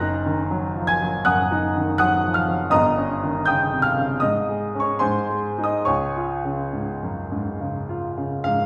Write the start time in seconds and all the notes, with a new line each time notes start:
Already playing: F#1 F#2 A#5 F#6 A#6
0.01 D#4
0.26 D#3
0.51 F#3
0.75 F3
0.87 G#5 G#6
1.02 F#3
1.25 F#2 F#5 D#6 F#6
1.51 D#4
1.76 D#3
1.98 F#3 F#5 D#6 F#6
2.25 F3
2.34 F5 F6
2.48 F#3
2.70 G1 G2 D#5 A#5 D#6
2.97 C#4
3.24 D#3
3.45 C#3 G5 D#6 G6
3.72 C3
3.82 F5 F6
3.97 C#3
4.20 G#2 D#5 D#6
4.49 G#3
4.75 G#3 C#4
4.80 C#5 C#6
4.99 G#2 C5 G#5 C6
5.29 G#3
5.58 G#3 D#4
5.64 D#5 D#6
5.85 C#2 C#5 G#5 C#6
6.17 F4
6.45 C#3
6.73 G#2
7.03 F#2
7.32 G#2
7.61 C#3
7.89 F4
8.17 C#3
8.44 G#2 F5